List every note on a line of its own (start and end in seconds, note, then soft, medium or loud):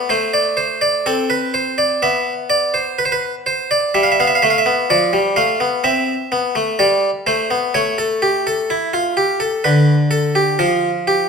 0.09 1.03 A3 medium
0.09 0.33 C5 medium
0.34 0.57 D5 medium
0.57 0.81 C5 medium
0.81 1.05 D5 medium
1.06 2.00 C4 medium
1.06 1.29 A4 medium
1.30 1.53 B4 medium
1.54 1.77 C5 medium
1.78 2.01 D5 medium
2.02 3.91 B3 medium
2.02 2.32 E5 medium
2.50 2.73 D5 medium
2.74 2.97 C5 medium
2.99 3.03 B4 medium
3.05 3.12 C5 medium
3.12 3.33 B4 medium
3.46 3.70 C5 medium
3.71 3.94 D5 medium
3.94 4.18 G3 medium
3.94 4.02 E5 medium
4.03 4.11 F5 medium
4.12 4.19 E5 medium
4.20 4.42 B3 medium
4.20 4.27 F5 medium
4.27 4.35 E5 medium
4.35 4.43 F5 medium
4.42 4.65 A3 medium
4.42 4.50 E5 medium
4.50 4.58 F5 medium
4.58 4.89 E5 medium
4.66 4.89 B3 medium
4.90 5.13 F3 medium
4.90 5.19 D5 medium
5.13 5.36 G3 medium
5.36 5.60 A3 medium
5.36 5.66 F5 medium
5.60 5.83 B3 medium
5.84 6.13 C4 medium
5.84 6.76 E5 medium
6.32 6.55 B3 medium
6.55 6.78 A3 medium
6.79 7.09 G3 medium
6.79 7.09 D5 medium
7.27 7.50 A3 medium
7.27 7.56 C5 medium
7.51 7.74 B3 medium
7.74 9.61 A3 medium
7.74 7.98 C#5 medium
7.98 8.21 A4 medium
8.22 8.45 G4 medium
8.47 8.69 A4 medium
8.70 8.93 E4 medium
8.94 9.17 F4 medium
9.17 9.40 G4 medium
9.40 9.63 A4 medium
9.64 10.57 D3 medium
9.64 9.94 B4 medium
10.11 10.34 A4 medium
10.35 10.59 G4 medium
10.59 11.29 F3 medium
10.59 10.89 F4 medium
11.07 11.29 G4 medium